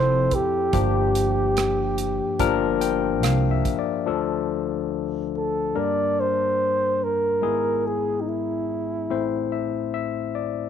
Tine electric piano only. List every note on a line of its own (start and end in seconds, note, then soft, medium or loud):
0.00 0.69 F1 medium
0.00 0.69 F2 medium
0.00 0.27 F3 medium
0.00 0.27 C4 medium
0.00 0.27 E4 medium
0.00 0.27 A4 medium
0.73 4.03 G1 medium
0.73 4.03 G2 medium
0.73 1.93 F3 medium
0.73 1.93 A#3 medium
0.73 1.93 D4 medium
0.73 1.94 G4 medium
2.39 3.61 F3 medium
2.39 3.61 A#3 medium
2.39 3.61 D4 medium
2.39 3.61 A#4 medium
2.81 3.20 G5 medium
3.23 3.49 F5 medium
3.51 3.77 E5 medium
3.79 4.05 D5 medium
4.06 5.71 D2 medium
4.06 5.71 D3 medium
4.06 5.28 F3 medium
4.06 5.29 A3 medium
4.06 5.28 D4 medium
4.06 5.29 A4 medium
5.75 7.39 G1 soft
5.75 7.39 G2 soft
5.75 6.96 G3 medium
5.75 6.96 A#3 medium
5.75 6.96 D4 medium
5.75 6.96 A#4 medium
7.42 9.06 G#1 soft
7.42 9.06 G#2 soft
7.42 8.63 G#3 medium
7.42 8.63 B3 medium
7.42 8.64 E4 medium
7.42 8.64 G#4 medium
9.10 10.69 A1 soft
9.10 10.69 A2 soft
9.10 10.31 A3 medium
9.10 10.31 C4 medium
9.10 10.31 E4 medium
9.10 10.31 C5 medium
9.52 9.91 E5 medium
9.94 10.32 E5 medium
10.35 10.69 D5 medium